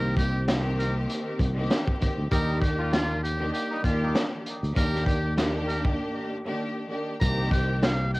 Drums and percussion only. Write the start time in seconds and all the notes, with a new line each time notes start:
0.17 kick, closed hi-hat
0.48 snare, closed hi-hat
0.80 closed hi-hat
1.10 closed hi-hat
1.39 kick, closed hi-hat
1.70 snare, closed hi-hat
1.87 kick
2.02 kick, closed hi-hat
2.32 kick, closed hi-hat
2.62 kick, closed hi-hat
2.93 snare, closed hi-hat
3.25 closed hi-hat
3.54 closed hi-hat
3.84 kick, closed hi-hat
4.15 snare, closed hi-hat
4.46 closed hi-hat
4.64 closed hi-hat
4.76 kick, closed hi-hat
4.95 snare
5.06 kick, closed hi-hat
5.38 snare, closed hi-hat
5.70 closed hi-hat
5.85 kick
7.21 kick, closed hi-hat
7.51 kick, closed hi-hat
7.83 snare, closed hi-hat
8.15 closed hi-hat